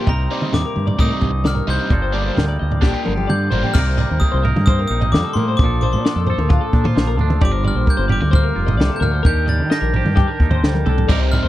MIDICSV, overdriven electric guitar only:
0, 0, Header, 1, 2, 480
1, 0, Start_track
1, 0, Tempo, 458716
1, 84, Time_signature, 4, 2, 24, 8
1, 12017, End_track
2, 0, Start_track
2, 0, Title_t, "Overdriven electric guitar"
2, 0, Program_c, 0, 29
2, 322, Note_on_c, 0, 60, 80
2, 324, Note_on_c, 0, 63, 81
2, 327, Note_on_c, 0, 55, 76
2, 332, Note_on_c, 0, 48, 69
2, 635, Note_off_c, 0, 60, 0
2, 636, Note_off_c, 0, 63, 0
2, 638, Note_off_c, 0, 55, 0
2, 641, Note_off_c, 0, 48, 0
2, 1036, Note_on_c, 0, 48, 82
2, 1040, Note_on_c, 0, 55, 86
2, 1045, Note_on_c, 0, 60, 95
2, 1051, Note_on_c, 0, 63, 98
2, 1353, Note_off_c, 0, 48, 0
2, 1355, Note_off_c, 0, 55, 0
2, 1357, Note_off_c, 0, 60, 0
2, 1360, Note_off_c, 0, 63, 0
2, 1752, Note_on_c, 0, 63, 77
2, 1760, Note_on_c, 0, 55, 78
2, 1761, Note_on_c, 0, 60, 77
2, 1762, Note_on_c, 0, 48, 69
2, 1999, Note_off_c, 0, 63, 0
2, 2003, Note_off_c, 0, 55, 0
2, 2004, Note_off_c, 0, 48, 0
2, 2004, Note_off_c, 0, 60, 0
2, 2226, Note_on_c, 0, 62, 87
2, 2228, Note_on_c, 0, 58, 82
2, 2237, Note_on_c, 0, 55, 72
2, 2238, Note_on_c, 0, 50, 72
2, 2548, Note_off_c, 0, 62, 0
2, 2549, Note_off_c, 0, 58, 0
2, 2553, Note_off_c, 0, 55, 0
2, 2554, Note_off_c, 0, 50, 0
2, 2949, Note_on_c, 0, 50, 86
2, 2956, Note_on_c, 0, 55, 99
2, 2957, Note_on_c, 0, 58, 97
2, 2958, Note_on_c, 0, 62, 93
2, 3270, Note_off_c, 0, 50, 0
2, 3273, Note_off_c, 0, 55, 0
2, 3274, Note_off_c, 0, 58, 0
2, 3274, Note_off_c, 0, 62, 0
2, 3681, Note_on_c, 0, 62, 85
2, 3685, Note_on_c, 0, 58, 83
2, 3688, Note_on_c, 0, 55, 77
2, 3696, Note_on_c, 0, 50, 71
2, 3923, Note_off_c, 0, 62, 0
2, 3925, Note_off_c, 0, 58, 0
2, 3927, Note_off_c, 0, 55, 0
2, 3931, Note_off_c, 0, 50, 0
2, 11603, Note_on_c, 0, 48, 83
2, 11611, Note_on_c, 0, 55, 92
2, 11624, Note_on_c, 0, 60, 92
2, 11626, Note_on_c, 0, 63, 98
2, 11824, Note_off_c, 0, 63, 0
2, 11837, Note_on_c, 0, 63, 69
2, 11848, Note_off_c, 0, 60, 0
2, 11851, Note_off_c, 0, 55, 0
2, 11852, Note_on_c, 0, 60, 60
2, 11863, Note_on_c, 0, 55, 62
2, 12017, Note_off_c, 0, 48, 0
2, 12017, Note_off_c, 0, 55, 0
2, 12017, Note_off_c, 0, 60, 0
2, 12017, Note_off_c, 0, 63, 0
2, 12017, End_track
0, 0, End_of_file